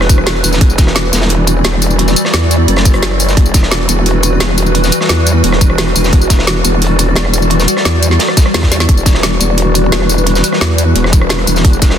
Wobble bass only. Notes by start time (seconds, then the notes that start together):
Already playing: E1
0.44 E1
0.61 E1
1.13 E1
1.65 E1
2.34 E2
2.68 F#1
3.37 E1
3.89 E1
4.41 E1
5.09 E2
5.44 E1
5.96 E1
6.13 E1
6.65 E1
7.16 E1
7.85 E2
8.54 E2
8.89 E1
9.40 E1
10.61 E2
10.96 E1
11.47 E1
11.65 E1